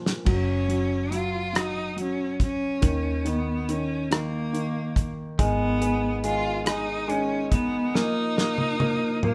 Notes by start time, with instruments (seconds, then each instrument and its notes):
Already playing: upright piano A#2 F3
0.06 snare
0.25 fingered electric bass F#1, upright piano F#3, kick, crash
0.31 cello C#4
0.68 upright piano F#3, closed hi-hat
1.11 upright piano F#3, cello F4, closed hi-hat
1.53 upright piano F#3, cross-stick, closed hi-hat
1.58 cello D#4
1.97 upright piano F#3, closed hi-hat
2.01 cello C#4
2.40 cello C#4, kick, closed hi-hat
2.82 fingered electric bass D#2, upright piano D#3, kick, closed hi-hat
3.25 upright piano D#3, cello B3, closed hi-hat
3.69 upright piano D#3, cello C#4, closed hi-hat
4.11 upright piano D#3, cello A#3, cross-stick, closed hi-hat
4.53 upright piano D#3, closed hi-hat
4.96 kick, closed hi-hat
5.39 fingered electric bass G#1, clean electric guitar D#3 D#4, upright piano G#3, cello B3, kick, closed hi-hat
5.81 upright piano G#3, clean electric guitar B3, closed hi-hat
6.24 clean electric guitar D#3, upright piano G#3, cello F4, closed hi-hat
6.66 upright piano G#3, cello D#4, clean electric guitar D#4, cross-stick, closed hi-hat
7.08 clean electric guitar D#3, upright piano G#3, cello C#4, closed hi-hat
7.52 cello B3, clean electric guitar D#4, kick, closed hi-hat
7.95 clean electric guitar F3 D#4, upright piano A#3, cello D#4, snare
8.37 upright piano A#3, clean electric guitar A#3, snare
8.58 high tom
8.80 clean electric guitar F3, upright piano A#3, high tom
9.23 clean electric guitar F3, upright piano A#3, cello A#3, mid tom